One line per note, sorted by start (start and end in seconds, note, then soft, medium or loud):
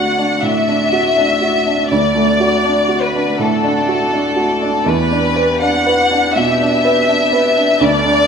0.00 0.39 D2 soft
0.00 1.87 A3 soft
0.00 0.18 D4 soft
0.00 0.92 F#4 soft
0.00 1.87 F#4 soft
0.00 1.88 D5 soft
0.00 0.43 F#5 medium
0.18 0.58 D4 soft
0.43 0.82 A2 soft
0.43 1.92 E5 medium
0.68 1.07 D4 soft
0.92 1.32 F#4 soft
1.17 1.57 D4 soft
1.41 1.81 F#4 soft
1.67 2.06 D4 soft
1.91 3.35 D2 soft
1.91 4.82 A3 soft
1.91 4.82 F#4 soft
1.91 3.00 D5 medium
1.91 7.77 D5 soft
2.15 2.55 A3 soft
2.40 2.80 F#4 soft
2.65 3.04 D4 soft
2.89 3.29 F#4 soft
3.03 3.39 B4 medium
3.15 3.54 D4 soft
3.39 3.79 A2 soft
3.39 4.86 A4 medium
3.64 4.03 D4 soft
3.88 4.27 F#4 soft
4.12 4.52 D4 soft
4.36 4.76 F#4 soft
4.62 4.86 D4 soft
4.85 6.32 E2 soft
4.85 8.27 B3 soft
4.85 7.81 G4 soft
4.85 5.62 B4 medium
5.11 5.52 D4 soft
5.36 5.77 B4 soft
5.62 6.02 D4 soft
5.62 6.35 F#5 medium
5.86 6.26 B4 soft
6.11 6.51 D4 soft
6.36 6.75 B2 soft
6.36 7.81 E5 medium
6.61 6.99 D4 soft
6.84 7.23 B4 soft
7.08 7.48 D4 soft
7.32 7.72 B4 soft
7.57 7.81 D4 soft
7.80 8.27 D2 medium
7.80 8.27 D4 soft
7.80 8.27 A4 soft
7.80 8.27 D5 medium
8.05 8.27 D4 soft